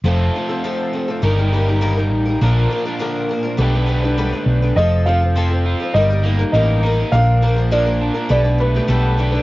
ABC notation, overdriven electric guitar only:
X:1
M:4/4
L:1/8
Q:1/4=102
K:Fmix
V:1 name="Overdriven electric guitar"
[F,A,CFA]4 [G,EGB]4 | [B,,F,B,DFB]4 [=B,DG=B]4 | F, F, C F G, B, B E | B,, F, B, D =B,, A, A D |]